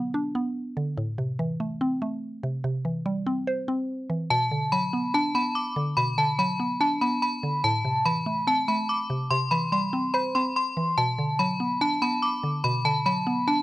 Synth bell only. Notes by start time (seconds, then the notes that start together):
4.31 A5
4.72 B5
5.14 A5
5.35 B5
5.55 D6
5.97 B5
6.18 A5
6.39 B5
6.81 A5
7.01 B5
7.22 B5
7.64 A5
8.06 B5
8.48 A5
8.68 B5
8.89 D6
9.31 C6
9.51 B5
9.72 C6
10.14 B5
10.35 C6
10.56 C6
10.97 A5
11.39 B5
11.81 A5
12.02 B5
12.22 D6
12.64 B5
12.85 A5
13.06 B5
13.47 A5